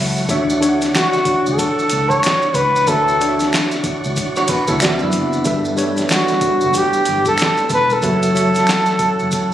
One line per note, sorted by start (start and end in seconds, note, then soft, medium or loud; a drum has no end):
0.00 0.27 C#2 medium
0.00 0.25 E3 medium
0.00 0.31 F#3 medium
0.00 0.25 A3 medium
0.00 0.26 F#4 medium
0.00 0.29 F#4 medium
0.00 0.30 A4 medium
0.00 0.30 C#5 medium
0.00 4.77 C#5 medium
0.00 0.27 E5 medium
0.00 0.31 F#5 medium
0.00 0.31 A5 medium
0.00 0.31 B5 medium
0.17 maracas soft
0.28 0.87 D2 medium
0.28 0.55 D3 loud
0.28 4.76 E3 medium
0.28 5.41 D4 medium
0.28 0.55 D4 medium
0.28 5.41 F#4 medium
0.28 0.55 F#4 medium
0.28 0.56 C#5 medium
0.28 0.56 E5 loud
0.28 kick loud
0.28 closed hi-hat medium
0.28 maracas medium
0.50 maracas medium
0.60 1.60 D3 medium
0.60 1.60 D4 medium
0.60 1.61 F#4 medium
0.60 1.61 C#5 medium
0.60 0.70 E5 medium
0.60 closed hi-hat medium
0.60 maracas medium
0.69 1.65 F#5 loud
0.81 snare soft
0.81 closed hi-hat soft
0.81 maracas soft
0.95 1.54 F#4 loud
0.95 finger snap medium
0.95 snare loud
0.95 clap medium
0.95 closed hi-hat medium
0.95 maracas medium
1.13 snare soft
1.13 maracas medium
1.25 muted fingered electric bass stroke soft
1.25 kick medium
1.25 closed hi-hat medium
1.25 maracas medium
1.46 1.58 C#2 medium
1.46 maracas soft
1.53 1.59 G#4 medium
1.58 2.10 A4 medium
1.58 kick medium
1.58 closed hi-hat medium
1.58 maracas medium
1.79 maracas medium
1.90 2.20 C#2 loud
1.90 closed hi-hat medium
1.90 maracas medium
2.09 2.50 C#5 loud
2.09 kick medium
2.09 maracas medium
2.23 finger snap medium
2.23 snare loud
2.23 closed hi-hat medium
2.23 maracas medium
2.27 clap medium
2.42 maracas soft
2.50 2.56 C#5 medium
2.54 2.84 C#2 loud
2.54 2.89 B4 loud
2.54 kick medium
2.54 closed hi-hat medium
2.54 maracas medium
2.76 maracas medium
2.87 3.46 D2 loud
2.87 3.13 D3 medium
2.87 3.13 D4 medium
2.87 3.14 F#4 medium
2.87 3.52 A4 loud
2.87 3.14 C#5 medium
2.87 3.14 E5 medium
2.87 kick loud
2.87 closed hi-hat medium
2.87 maracas medium
3.08 maracas medium
3.19 4.19 D3 medium
3.19 4.19 D4 medium
3.19 4.19 F#4 medium
3.19 4.20 C#5 medium
3.19 3.28 D5 medium
3.19 closed hi-hat medium
3.19 maracas medium
3.29 4.23 E5 medium
3.39 snare soft
3.39 closed hi-hat soft
3.39 maracas soft
3.53 finger snap medium
3.53 snare loud
3.53 clap medium
3.53 closed hi-hat medium
3.53 maracas medium
3.71 snare soft
3.71 maracas soft
3.84 muted fingered electric bass stroke soft
3.84 kick loud
3.84 closed hi-hat medium
3.84 maracas soft
4.04 4.16 C#2 medium
4.04 maracas medium
4.16 kick medium
4.16 closed hi-hat medium
4.16 maracas medium
4.36 4.49 F#4 medium
4.36 4.49 C#5 medium
4.36 maracas medium
4.48 4.67 F#4 medium
4.48 4.67 B4 medium
4.48 muted fingered electric bass stroke soft
4.48 kick loud
4.48 closed hi-hat medium
4.48 maracas medium
4.67 4.80 C#2 medium
4.67 4.81 E4 medium
4.67 4.80 A4 medium
4.67 kick medium
4.67 maracas medium
4.80 4.99 D2 loud
4.80 5.44 C3 medium
4.80 5.35 D3 medium
4.80 8.00 E3 medium
4.80 5.00 C4 medium
4.80 5.35 D4 medium
4.80 5.35 F#4 medium
4.80 5.00 F#4 medium
4.80 4.90 D5 medium
4.80 finger snap medium
4.80 closed hi-hat medium
4.80 maracas medium
4.84 snare loud
4.84 clap medium
4.89 5.39 E5 loud
4.99 5.13 F#2 medium
4.99 5.44 B3 medium
4.99 5.44 E4 medium
4.99 maracas soft
5.11 5.43 F#1 loud
5.11 closed hi-hat medium
5.11 maracas medium
5.33 maracas medium
5.45 6.04 G1 medium
5.45 5.71 G3 loud
5.45 8.01 G3 medium
5.45 9.54 A3 medium
5.45 8.01 B3 medium
5.45 5.72 D4 medium
5.45 5.72 A4 medium
5.45 5.72 B4 medium
5.45 5.72 E5 loud
5.45 kick loud
5.45 closed hi-hat medium
5.45 maracas medium
5.65 maracas medium
5.76 6.76 G3 medium
5.76 6.76 D4 medium
5.76 6.77 A4 medium
5.76 6.77 B4 medium
5.76 6.77 C#5 loud
5.76 closed hi-hat medium
5.76 maracas soft
5.96 snare soft
5.96 closed hi-hat soft
5.96 maracas soft
6.09 finger snap medium
6.09 snare loud
6.09 clap loud
6.09 closed hi-hat medium
6.09 maracas medium
6.13 6.78 F#4 medium
6.28 snare soft
6.28 maracas soft
6.41 muted fingered electric bass stroke soft
6.41 kick medium
6.41 closed hi-hat medium
6.41 maracas medium
6.61 6.74 F#1 medium
6.61 maracas soft
6.73 7.27 G4 loud
6.73 kick medium
6.73 closed hi-hat medium
6.73 maracas medium
6.93 maracas medium
7.05 7.36 G1 medium
7.05 closed hi-hat medium
7.05 maracas medium
7.25 7.68 A4 medium
7.25 kick medium
7.25 maracas medium
7.38 finger snap medium
7.38 closed hi-hat medium
7.38 maracas medium
7.42 snare loud
7.42 clap medium
7.57 maracas soft
7.69 8.00 E1 loud
7.69 7.94 B4 loud
7.69 kick loud
7.69 closed hi-hat medium
7.69 maracas medium
7.90 9.54 A4 loud
7.90 maracas soft
8.02 8.62 F#1 loud
8.02 9.54 E3 medium
8.02 8.29 F#3 medium
8.02 9.54 C#4 medium
8.02 8.29 F#4 medium
8.02 9.54 F#4 medium
8.02 8.29 A4 medium
8.02 8.30 C#5 medium
8.02 8.30 E5 medium
8.02 kick loud
8.02 closed hi-hat medium
8.02 maracas medium
8.23 closed hi-hat medium
8.23 maracas medium
8.34 9.34 F#3 medium
8.34 9.34 F#4 medium
8.34 9.35 A4 medium
8.34 9.35 C#5 medium
8.34 9.35 E5 medium
8.34 closed hi-hat medium
8.34 maracas soft
8.54 snare soft
8.54 closed hi-hat soft
8.54 maracas soft
8.67 finger snap medium
8.67 snare loud
8.67 clap loud
8.67 closed hi-hat medium
8.67 maracas medium
8.86 snare soft
8.86 maracas soft
8.99 muted fingered electric bass stroke soft
8.99 kick loud
8.99 closed hi-hat medium
8.99 maracas medium
9.19 9.33 F#1 medium
9.19 maracas soft
9.31 kick medium
9.31 closed hi-hat medium
9.31 maracas medium